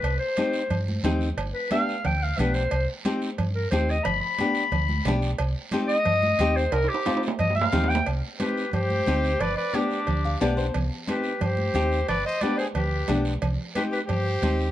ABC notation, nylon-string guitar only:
X:1
M:4/4
L:1/8
Q:1/4=179
K:Cm
V:1 name="Nylon-string guitar"
z2 [CEG] z3 [CEG] z | z2 [=B,DG] z3 [B,DG] z | z2 [CEG] z3 [CEG] z | z2 [=B,DG] z3 [B,DG] z |
z2 [CEG] z3 [CEG] z | z2 [CEF] z3 [CEG] z | z2 [CEG] z3 [CEG] z | z2 [=B,DG] z2 f [B,DGd] c |
z2 [CEG] z3 [CEG] z | z2 [=B,DG] z3 [B,DG] z | z2 [CEG] z3 [CEG] z |]